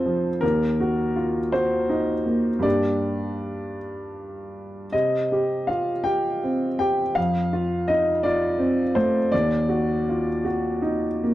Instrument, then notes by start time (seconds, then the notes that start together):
upright piano
Already playing: F2 C4 D#4 F4 A4 C5
0.06 F3
0.41 D#2 A#4
0.80 F#4
1.16 F4
1.52 F#4 C5
1.89 D#4
2.26 A#3
2.59 G2 A#3 D4 D5
2.63 G4
4.92 C3 D#5
5.32 G4
5.67 F4 F5
6.04 G4 G5
6.43 C4
6.79 G4 G5
7.15 F2 F5
7.53 F4
7.88 D#4 D#5
8.23 F4 D5
8.58 C4
8.95 A3 C5
9.32 D#2 D5
9.69 F#4
10.09 F4
10.45 F#4
10.82 D#4
11.24 A#3